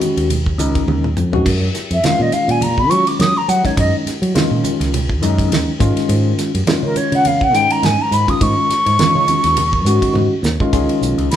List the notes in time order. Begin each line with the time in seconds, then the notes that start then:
Already playing: D#3 G#3 C#4 F#4
0.01 hi-hat pedal, ride, high conga
0.17 D#2, ride
0.30 ride, muted conga, low conga
0.46 kick
0.58 C#2 D#3 G#3 C#4 D#4, hi-hat pedal, ride
0.75 kick, ride
0.87 D#2, high tom, high conga
1.04 mid tom
1.17 F2, hi-hat pedal, mid tom
1.32 D#3 G#3 C#4 F#4, floor tom
1.45 F#2, kick, ride, crash
1.75 snare, hi-hat pedal, ride
1.91 F2 E5, ride
2.03 D#3 G#3 C#4 F4 F5, muted fingered electric bass stroke, snare, ride, muted conga, high conga
2.19 A#2 D#5
2.32 F5, muted fingered electric bass stroke, hi-hat pedal, ride
2.48 A#2 G#5, ride
2.61 A#5, ride, muted conga, high conga
2.78 B5, kick
2.90 D#3 F#3 G#3 C#4 F4 C#6, hi-hat pedal, ride
3.07 D6, ride
3.19 F#3 D#6, snare, ride, high conga
3.37 A#5
3.48 F#3 F#5, hi-hat pedal, ride
3.63 D#3 G#3 C#4 D#4 C#5, kick, snare, ride
3.77 F#2 D#5, kick, ride
4.06 muted fingered electric bass stroke, snare, hi-hat pedal, ride
4.22 F#3, ride
4.34 D#3 G#3 C#4 F4, snare, ride, muted conga, high conga
4.51 A#2
4.64 hi-hat pedal, ride, high conga
4.80 C#2, snare, ride
4.94 ride, muted conga, low conga
5.09 kick
5.22 F#2 D#3 G#3 C#4 D#4, hi-hat pedal, ride, muted conga
5.38 kick, ride
5.51 D#2, snare, ride, high conga
5.79 G#2 D#3 G#3 C#4 F4, kick, hi-hat pedal, ride
5.96 muted fingered electric bass stroke, snare, ride
6.09 G#2, ride
6.39 snare, hi-hat pedal, ride
6.54 F#2, ride
6.67 D#3 G#3 C#4 F4, muted fingered electric bass stroke, snare, ride, muted conga, high conga
6.83 C#3 A#4
6.95 C#5, muted fingered electric bass stroke, hi-hat pedal, ride
7.12 C#3 F#5, ride
7.25 F5, ride, muted conga, high conga
7.41 F#5, kick
7.53 G#2 D#3 G#3 C#4 D#4 G5, hi-hat pedal, ride, muted conga
7.70 A#5, ride
7.83 G#2 G#5, snare, ride, high conga
8.02 A#5
8.11 G#2 B5, hi-hat pedal, ride
8.27 D#3 G#3 C#4 F4 D#6, kick, ride
8.41 G#2 C#6, kick, ride
8.70 muted fingered electric bass stroke, snare, hi-hat pedal, ride
8.86 G#2, ride
8.99 D#3 G#3 C#4 F4, snare, ride, muted conga, high conga
9.15 C#3
9.28 hi-hat pedal, ride, high conga
9.44 D#2, snare, ride
9.57 ride, muted conga, low conga
9.73 kick
9.85 G#2 D#3 G#3 C#4 F#4, hi-hat pedal, ride
10.02 kick, ride
10.14 G#2, high tom, high conga
10.43 D#2, snare, hi-hat pedal
10.60 D#3 G#3 C#4 F4, kick
10.73 C#2 D#3 G#3 C#4 F4, kick, hi-hat pedal, ride
10.89 ride
11.01 B1, hi-hat pedal
11.18 C#2, ride
11.31 B5, snare, hi-hat pedal, ride